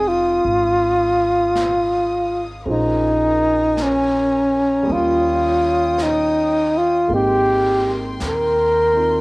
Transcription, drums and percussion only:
0.44 brush sweep
1.55 brush sweep, snare, hi-hat pedal
2.67 brush sweep
3.77 brush sweep, snare, hi-hat pedal
4.88 brush sweep
5.98 brush sweep, snare, hi-hat pedal
7.09 brush sweep
8.20 brush sweep, snare, hi-hat pedal

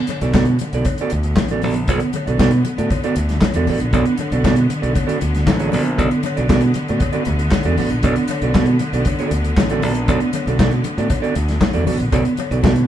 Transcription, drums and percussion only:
0.07 closed hi-hat, cowbell, muted conga
0.21 closed hi-hat
0.34 kick, snare, clap, cowbell, high conga
0.45 closed hi-hat
0.59 closed hi-hat, muted conga
0.73 closed hi-hat
0.85 kick, closed hi-hat, cowbell
0.98 closed hi-hat
1.10 closed hi-hat
1.23 closed hi-hat
1.36 kick, snare, clap, cowbell, high conga
1.48 closed hi-hat
1.62 open hi-hat, high conga
1.74 closed hi-hat
1.88 kick, closed hi-hat, cowbell, muted conga
2.00 closed hi-hat
2.13 closed hi-hat, cowbell, muted conga
2.27 closed hi-hat
2.39 kick, snare, clap, cowbell, high conga
2.51 closed hi-hat
2.65 closed hi-hat, muted conga
2.78 closed hi-hat
2.90 kick, closed hi-hat, cowbell
3.04 closed hi-hat
3.16 closed hi-hat
3.29 snare, closed hi-hat
3.41 kick, snare, clap, cowbell, high conga
3.54 closed hi-hat
3.67 open hi-hat, high conga
3.80 closed hi-hat
3.93 kick, closed hi-hat, cowbell, muted conga
4.05 closed hi-hat
4.17 closed hi-hat, cowbell, muted conga
4.32 closed hi-hat
4.44 kick, snare, clap, cowbell, high conga
4.56 closed hi-hat
4.70 closed hi-hat, muted conga
4.83 closed hi-hat
4.95 kick, closed hi-hat, cowbell
5.09 closed hi-hat
5.21 closed hi-hat, muted conga
5.35 snare, closed hi-hat
5.47 kick, snare, clap, cowbell, high conga
5.59 closed hi-hat
5.72 open hi-hat, high conga
5.85 closed hi-hat
5.99 kick, closed hi-hat, cowbell, muted conga
6.11 closed hi-hat
6.23 closed hi-hat, cowbell, muted conga
6.37 closed hi-hat
6.50 kick, snare, clap, cowbell, high conga
6.61 closed hi-hat
6.74 closed hi-hat, muted conga
6.88 closed hi-hat
7.00 kick, closed hi-hat, cowbell
7.13 closed hi-hat
7.25 closed hi-hat, muted conga, low conga
7.39 closed hi-hat
7.51 kick, snare, clap, cowbell, high conga
7.63 closed hi-hat
7.77 open hi-hat, high conga
7.90 closed hi-hat
8.03 kick, closed hi-hat, cowbell, muted conga
8.16 closed hi-hat
8.28 closed hi-hat, cowbell, muted conga
8.42 closed hi-hat
8.55 kick, snare, clap, cowbell, high conga
8.66 closed hi-hat
8.79 closed hi-hat, muted conga
8.93 closed hi-hat
9.05 kick, closed hi-hat, cowbell
9.19 closed hi-hat
9.31 closed hi-hat
9.44 closed hi-hat
9.57 kick, snare, clap, cowbell, high conga
9.69 closed hi-hat
9.82 open hi-hat, high conga
9.95 closed hi-hat
10.08 kick, closed hi-hat, cowbell, muted conga
10.20 closed hi-hat
10.33 closed hi-hat, cowbell, muted conga
10.47 closed hi-hat
10.59 kick, snare, clap, cowbell, high conga
10.71 closed hi-hat
10.84 closed hi-hat, muted conga
10.98 closed hi-hat
11.10 kick, closed hi-hat, cowbell
11.24 closed hi-hat
11.35 closed hi-hat, muted conga
11.48 snare, closed hi-hat
11.61 kick, snare, clap, cowbell, high conga
11.73 closed hi-hat
11.87 open hi-hat, high conga
11.99 closed hi-hat
12.12 kick, closed hi-hat, cowbell, muted conga
12.25 closed hi-hat
12.37 closed hi-hat, cowbell, muted conga
12.52 closed hi-hat
12.64 kick, snare, clap, cowbell, high conga
12.76 closed hi-hat

